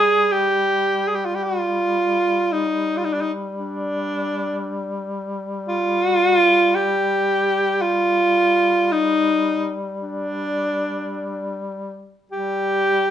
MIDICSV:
0, 0, Header, 1, 3, 480
1, 0, Start_track
1, 0, Tempo, 1107011
1, 1101, Time_signature, 3, 2, 24, 8
1, 1102, Tempo, 1061947
1, 3982, Tempo, 1123596
1, 5773, End_track
2, 0, Start_track
2, 0, Title_t, "Alto saxophone"
2, 0, Program_c, 0, 65
2, 0, Note_on_c, 0, 68, 109
2, 138, Note_on_c, 0, 67, 87
2, 144, Note_off_c, 0, 68, 0
2, 467, Note_on_c, 0, 68, 70
2, 474, Note_off_c, 0, 67, 0
2, 501, Note_on_c, 0, 67, 62
2, 507, Note_off_c, 0, 68, 0
2, 543, Note_on_c, 0, 65, 68
2, 549, Note_off_c, 0, 67, 0
2, 586, Note_on_c, 0, 67, 65
2, 592, Note_off_c, 0, 65, 0
2, 624, Note_on_c, 0, 65, 81
2, 630, Note_off_c, 0, 67, 0
2, 1093, Note_on_c, 0, 63, 81
2, 1100, Note_off_c, 0, 65, 0
2, 1296, Note_on_c, 0, 65, 73
2, 1303, Note_off_c, 0, 63, 0
2, 1329, Note_on_c, 0, 63, 62
2, 1336, Note_off_c, 0, 65, 0
2, 1371, Note_on_c, 0, 62, 67
2, 1378, Note_off_c, 0, 63, 0
2, 1405, Note_on_c, 0, 63, 62
2, 1412, Note_off_c, 0, 62, 0
2, 1452, Note_off_c, 0, 63, 0
2, 1565, Note_on_c, 0, 62, 63
2, 2275, Note_off_c, 0, 62, 0
2, 2523, Note_on_c, 0, 65, 109
2, 3005, Note_on_c, 0, 67, 84
2, 3012, Note_off_c, 0, 65, 0
2, 3486, Note_on_c, 0, 65, 92
2, 3493, Note_off_c, 0, 67, 0
2, 3984, Note_on_c, 0, 63, 100
2, 3991, Note_off_c, 0, 65, 0
2, 4341, Note_off_c, 0, 63, 0
2, 4455, Note_on_c, 0, 62, 70
2, 5171, Note_off_c, 0, 62, 0
2, 5437, Note_on_c, 0, 67, 96
2, 5773, Note_off_c, 0, 67, 0
2, 5773, End_track
3, 0, Start_track
3, 0, Title_t, "Duduk"
3, 0, Program_c, 1, 69
3, 0, Note_on_c, 1, 55, 45
3, 5357, Note_off_c, 1, 55, 0
3, 5430, Note_on_c, 1, 55, 49
3, 5773, Note_off_c, 1, 55, 0
3, 5773, End_track
0, 0, End_of_file